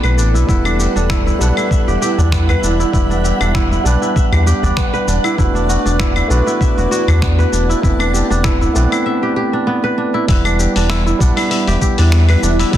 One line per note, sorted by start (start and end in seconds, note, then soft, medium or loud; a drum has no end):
0.00 0.19 B1 medium
0.00 0.50 A3 medium
0.00 0.48 B3 medium
0.00 1.74 B3 medium
0.00 0.51 C4 medium
0.00 0.17 D4 medium
0.00 0.34 E4 medium
0.00 0.49 E4 medium
0.00 0.79 G4 medium
0.00 1.40 A4 medium
0.00 0.50 B4 medium
0.00 1.47 B4 medium
0.00 1.27 B4 medium
0.00 0.30 E5 medium
0.00 claves medium
0.04 cabasa soft
0.17 0.36 A1 medium
0.17 0.65 D4 medium
0.17 cabasa medium
0.34 0.44 B1 medium
0.34 0.48 E4 medium
0.34 cabasa soft
0.47 0.88 E1 loud
0.47 1.36 G3 medium
0.47 1.37 B3 medium
0.47 3.92 E4 medium
0.47 1.09 E4 medium
0.47 1.37 E4 medium
0.47 9.06 F#5 medium
0.47 1.38 F#5 medium
0.47 kick loud
0.47 cabasa soft
0.51 1.38 B4 medium
0.65 0.95 D4 medium
0.65 cabasa soft
0.65 claves medium
0.79 1.87 G4 medium
0.79 3.72 E5 medium
0.79 cabasa medium
0.96 1.34 E1 medium
0.96 1.40 D4 medium
0.96 cabasa soft
1.10 1.26 E4 loud
1.10 finger snap medium
1.10 kick loud
1.10 cabasa soft
1.26 1.57 E4 medium
1.26 udu loud
1.26 cabasa soft
1.39 1.52 B1 medium
1.39 2.90 G3 medium
1.39 2.90 B3 medium
1.39 2.18 D4 medium
1.39 2.91 E4 medium
1.39 2.91 B4 loud
1.39 2.93 F#5 medium
1.39 2.91 F#5 medium
1.39 cabasa medium
1.57 2.79 E4 medium
1.57 3.92 B5 medium
1.57 cabasa soft
1.57 claves medium
1.71 2.75 E5 medium
1.71 kick loud
1.71 cabasa soft
1.87 1.97 E1 loud
1.87 2.01 G4 medium
1.87 cabasa soft
2.02 3.24 G4 medium
2.02 cabasa medium
2.18 2.56 E2 medium
2.18 2.63 D4 medium
2.18 udu medium
2.18 cabasa soft
2.32 4.19 B3 medium
2.32 finger snap medium
2.32 kick medium
2.32 cabasa soft
2.48 3.72 B4 medium
2.48 udu medium
2.48 cabasa soft
2.48 claves medium
2.63 2.85 E1 medium
2.63 3.10 D4 medium
2.63 cabasa medium
2.80 2.93 E4 medium
2.80 cabasa soft
2.92 3.33 E1 loud
2.92 3.81 G3 medium
2.92 3.82 B3 medium
2.92 3.82 D4 medium
2.92 3.54 E4 medium
2.92 3.83 G4 medium
2.92 9.06 B4 medium
2.92 3.83 B4 medium
2.92 kick medium
2.92 cabasa soft
3.10 3.40 D4 medium
3.10 cabasa soft
3.24 4.32 G4 medium
3.24 cabasa medium
3.40 3.79 E1 medium
3.40 3.85 D4 medium
3.40 cabasa soft
3.40 claves medium
3.55 3.71 E4 loud
3.55 finger snap medium
3.55 kick loud
3.55 cabasa soft
3.65 8.82 D5 medium
3.70 4.01 E4 medium
3.70 udu medium
3.70 cabasa soft
3.84 3.97 B1 medium
3.84 5.34 G3 medium
3.84 5.35 B3 medium
3.84 4.63 D4 medium
3.84 5.35 D4 medium
3.84 5.36 G4 medium
3.84 5.36 B4 loud
3.84 cabasa medium
4.02 5.24 E4 medium
4.02 cabasa soft
4.16 5.19 E5 medium
4.16 kick loud
4.16 cabasa soft
4.32 4.53 E2 loud
4.32 4.46 G4 medium
4.32 udu medium
4.32 cabasa soft
4.32 claves medium
4.46 5.75 G4 loud
4.46 cabasa medium
4.62 4.73 E1 loud
4.62 5.07 D4 medium
4.62 udu medium
4.62 cabasa soft
4.77 6.63 B3 medium
4.77 finger snap medium
4.77 kick loud
4.77 cabasa soft
4.94 6.16 B4 loud
4.94 cabasa soft
5.07 5.19 E1 medium
5.07 5.55 D4 medium
5.07 cabasa medium
5.24 5.38 E4 medium
5.24 cabasa soft
5.24 claves medium
5.37 5.78 E1 loud
5.37 6.26 A3 medium
5.37 6.27 B3 medium
5.37 6.27 D4 medium
5.37 5.99 E4 medium
5.37 8.82 E4 medium
5.37 6.28 F#4 medium
5.37 kick loud
5.37 cabasa soft
5.41 6.28 B4 medium
5.55 5.85 D4 medium
5.55 cabasa soft
5.69 6.77 F#4 medium
5.69 cabasa medium
5.85 6.23 E1 medium
5.85 6.30 D4 medium
5.85 cabasa soft
5.99 6.16 E4 loud
5.99 finger snap medium
5.99 kick loud
5.99 cabasa soft
6.10 8.82 F#5 medium
6.16 6.46 E4 medium
6.16 udu medium
6.16 cabasa soft
6.16 claves medium
6.28 6.42 B1 medium
6.28 7.79 A3 medium
6.28 7.79 B3 medium
6.28 7.80 D4 medium
6.28 7.08 D4 medium
6.28 7.80 F#4 medium
6.28 7.81 B4 loud
6.28 cabasa medium
6.47 7.69 E4 medium
6.47 8.82 A5 medium
6.47 cabasa soft
6.61 7.64 E5 medium
6.61 kick medium
6.61 cabasa soft
6.77 6.87 E1 loud
6.77 6.91 F#4 medium
6.77 cabasa soft
6.91 8.19 F#4 loud
6.91 cabasa medium
7.08 7.46 E2 medium
7.08 7.52 D4 medium
7.08 udu medium
7.08 cabasa soft
7.08 claves medium
7.22 9.08 B3 medium
7.22 finger snap medium
7.22 kick loud
7.22 cabasa soft
7.38 8.62 B4 medium
7.38 udu medium
7.38 cabasa soft
7.52 7.75 E1 medium
7.52 7.99 D4 medium
7.52 cabasa medium
7.69 7.83 E4 medium
7.69 cabasa soft
7.81 8.23 E1 medium
7.81 8.71 A3 medium
7.81 8.71 B3 medium
7.81 8.72 C4 medium
7.81 8.44 E4 medium
7.81 8.72 E4 medium
7.81 kick medium
7.81 cabasa soft
7.86 8.73 B4 medium
8.00 8.30 D4 medium
8.00 cabasa soft
8.00 claves medium
8.06 9.06 A4 medium
8.13 9.22 G4 medium
8.13 cabasa medium
8.30 8.68 E1 medium
8.30 8.75 D4 medium
8.30 cabasa soft
8.44 8.61 E4 loud
8.44 finger snap medium
8.44 kick loud
8.44 cabasa soft
8.61 8.92 E4 medium
8.61 udu medium
8.61 cabasa soft
8.74 8.87 B1 medium
8.74 9.05 A3 medium
8.74 9.06 B3 medium
8.74 9.06 C4 medium
8.74 9.53 D4 medium
8.74 9.07 E4 medium
8.74 9.07 B4 loud
8.74 cabasa medium
8.92 10.14 E4 medium
8.92 cabasa soft
8.92 claves medium
9.06 10.09 E5 medium
9.23 9.36 G4 medium
9.36 10.59 G4 medium
9.53 9.97 D4 medium
9.67 11.53 B3 medium
9.84 11.07 B4 loud
9.98 10.44 D4 medium
10.14 10.28 E4 medium
10.27 10.68 E1 loud
10.27 11.16 G3 medium
10.27 11.17 B3 medium
10.27 10.89 E4 medium
10.27 12.77 E4 medium
10.27 11.17 E4 medium
10.27 11.18 B4 medium
10.27 11.18 F#5 medium
10.27 kick loud
10.27 open hi-hat medium
10.27 cabasa soft
10.45 10.75 D4 medium
10.45 cabasa soft
10.45 claves medium
10.59 11.67 G4 medium
10.59 cabasa medium
10.76 11.14 E1 medium
10.76 11.20 D4 medium
10.76 open hi-hat soft
10.76 cabasa soft
10.89 11.06 E4 loud
10.89 finger snap loud
10.89 open hi-hat medium
10.89 cabasa soft
10.96 12.77 E5 medium
11.06 11.36 E4 medium
11.06 12.74 F#5 medium
11.06 cabasa soft
11.19 11.32 B1 medium
11.19 12.69 G3 medium
11.19 12.70 B3 medium
11.19 11.98 D4 medium
11.19 12.70 E4 medium
11.19 12.71 F#5 medium
11.19 kick loud
11.19 cabasa medium
11.23 12.71 B4 medium
11.36 12.59 E4 medium
11.36 open hi-hat soft
11.36 cabasa soft
11.36 claves medium
11.41 12.77 B5 medium
11.51 12.54 E5 medium
11.51 open hi-hat medium
11.51 cabasa soft
11.67 11.77 E1 loud
11.67 11.81 G4 medium
11.67 open hi-hat soft
11.67 cabasa soft
11.81 12.77 G4 loud
11.81 kick medium
11.81 cabasa medium
11.98 12.36 E2 medium
11.98 12.42 D4 medium
11.98 open hi-hat soft
11.98 cabasa soft
12.12 12.77 B3 medium
12.12 finger snap loud
12.12 open hi-hat medium
12.12 cabasa soft
12.29 12.77 B4 loud
12.29 open hi-hat soft
12.29 cabasa soft
12.29 claves medium
12.43 12.65 E1 medium
12.43 12.77 D4 medium
12.43 cabasa medium
12.59 12.73 E4 medium
12.59 open hi-hat soft
12.59 cabasa soft
12.71 12.77 E1 medium
12.71 12.77 G3 medium
12.71 12.77 B3 medium
12.71 12.77 D4 medium
12.71 12.77 E4 medium
12.71 12.77 G4 medium
12.71 12.77 B4 medium
12.71 kick loud
12.71 open hi-hat medium
12.71 cabasa soft